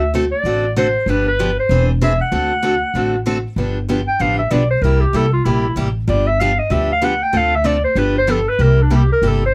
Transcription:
Already playing: D2 E5
0.14 D3 A3 C4 F#4 A4
0.31 D5
0.44 A1 D3 A3 C4 F#4 A4
0.76 D3 A3 C4 F#4 A4 C5
1.06 G1 D3 F3 B3 D4 G4 B4
1.28 B4
1.39 D3 F3 B3 D4 G4
1.60 C5
1.69 E1 E3 C4 D4 G#4
2.01 E3 C4 D4 G#4 E5
2.21 F#5
2.32 D2 D3 A3 C4 F#4 A4
2.62 D3 A3 C4 F#4 A4
2.94 A1 D3 A3 C4 F#4 A4
3.26 D3 A3 C4 F#4 A4
3.56 G1 D3 F3 B3 D4 G4
3.89 D3 F3 B3 D4 G4
4.08 G5
4.19 A1 D3 F3 B3 D4 G4 F5
4.38 E5
4.51 B1 D3 F3 B3 D4 G4 D5
4.70 C5
4.82 C2 C3 G3 A#3 E4 G4 A#4
5.01 G4
5.13 C2 C3 G3 A#3 E4 G4 A4
5.33 F4
5.45 A#1 C3 G3 A#3 E4 G4
5.76 A1 C3 G3 A#3 E4 G4
6.08 G1 D3 F3 B3 D4 G4 D5
6.27 E5
6.40 D3 F3 B3 D4 G4 F5
6.59 D#5
6.70 D2 D3 F3 B3 D4 G4 E5
6.92 F5
7.02 D3 F3 B3 D4 G4 F#5
7.23 G5
7.33 D2 D3 A3 C4 F4 A4
7.37 F5
7.55 E5
7.64 D3 A3 C4 F4 A4 D5
7.84 C5
7.95 G1 D3 F3 B3 D4 G4 B4
8.18 C5
8.27 D3 F3 B3 D4 G4 A4
8.49 B4
8.59 C2 C3 G3 A#3 E4 G4 A#4
8.82 D4
8.90 C3 G3 A#3 E4 G4
8.96 G4
9.12 A#4
9.22 G1 C3 G3 A#3 E4 G4
9.28 A4
9.46 C5

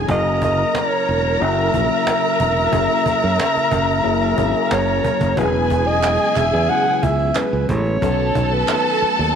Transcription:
Already playing: F#3 B3 C#4 A4
0.07 F#1 C#3 F#3 A#3 C#4 E4 G#4 A#4 A#5, cajon bass
0.11 D#5
0.42 D#5, cajon bass
0.75 C#5, cajon slap
1.08 E1, cajon slap
1.39 F#1 F#3 A#3 C#4 E4 F#4 E5, cajon slap
1.72 A#1 F#3 A#3 C#4 E4 A#4, cajon bass
2.07 cajon slap
2.40 E1, cajon bass
2.58 cajon slap
2.71 F#1 F#3 A#3 C#4 E4 G#4, cajon bass
3.06 muted fingered electric bass stroke, cajon bass
3.24 F#2
3.40 cajon slap
3.57 muted fingered electric bass stroke
3.72 F#1, cajon bass, cajon slap
4.04 F#1 F#3 A#3 C#4 E4 G#4, cajon slap
4.36 G#1 F#3 A#3 C#4 E4 G#4, cajon bass
4.71 F#1 C#5, cajon slap
5.04 cajon bass
5.21 F#1, cajon bass, cajon slap
5.35 E1 C#3 F#3 G#3 B3 C#4 E4 G#4 B4 G#5, cajon bass
5.53 cajon slap
5.70 cajon bass
5.87 D#5, cajon slap
6.03 cajon slap, clap
6.20 cajon slap
6.36 E1 E5, cajon bass, clap
6.54 E2, cajon slap
6.69 F#3 B3 C#4 E4 G#4 F#5, cajon slap
6.86 cajon slap
6.97 F#5
7.03 C#2 E5, cajon bass
7.20 cajon slap
7.35 B4, cajon slap, clap
7.52 C#2, cajon slap
7.69 A1 C#5, cajon bass
7.85 cajon slap
8.01 B1 D#3 F#3 A3 B3 C#4 D#4 F#4 A4 A5, cajon bass
8.18 cajon slap
8.35 B1, cajon bass
8.52 B4, cajon slap
8.68 cajon slap, clap
8.85 cajon slap
9.02 muted fingered electric bass stroke, cajon slap
9.18 D#2, cajon slap

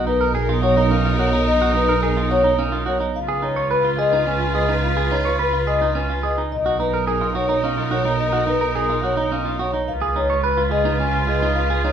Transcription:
Already playing: B1 D#4 A#4
0.07 D#4 B4
0.21 A#4
0.35 G#4 A#4
0.49 F4
0.63 F#4 C#5
0.77 D#4
0.91 C#4 F5
1.05 F4
1.19 F#4 C#5
1.33 D#4
1.47 D#5
1.61 F#4
1.75 D#4 B4
1.89 A#4
2.03 G#4 A#4
2.17 F4
2.31 F#4 C#5
2.44 D#4
2.59 C#4
2.72 F4
2.86 F#4 C#5
3.00 D#4
3.14 C#2 F4 B4 F5
3.28 G#4
3.42 D#4 C#5
3.56 C#5
3.71 B4
3.84 F4
3.99 G#4 D#5
4.13 D#4
4.27 C#4 G#5
4.40 F4
4.55 G#4 D#5
4.69 D#4
4.83 F5
4.97 G#4
5.11 D#4 C#5
5.25 C#5
5.39 B4
5.53 F4
5.67 G#4 D#5
5.82 D#4
5.95 C#4 G#5
6.10 F4
6.23 G#4 D#5
6.38 D#4
6.51 B1 D#4 A#4 D#5
6.66 F#4
6.80 D#4 B4
6.94 A#4
7.07 G#4 A#4
7.21 F4
7.35 F#4 C#5
7.49 D#4
7.64 C#4 F5
7.77 F4
7.91 F#4 C#5
8.05 D#4
8.20 D#5
8.33 F#4
8.47 D#4 B4
8.61 A#4
8.75 G#4 A#4
8.89 F4
9.03 F#4 C#5
9.17 D#4
9.32 C#4 F5
9.45 F4
9.59 F#4 C#5
9.73 D#4
9.87 C#2 F4 B4 F5
10.02 G#4
10.16 D#4 C#5
10.30 C#5
10.44 B4
10.57 F4
10.71 G#4 D#5
10.85 D#4
11.00 C#4 G#5
11.14 F4
11.28 G#4 D#5
11.42 D#4
11.56 F5
11.70 G#4
11.84 D#4 C#5

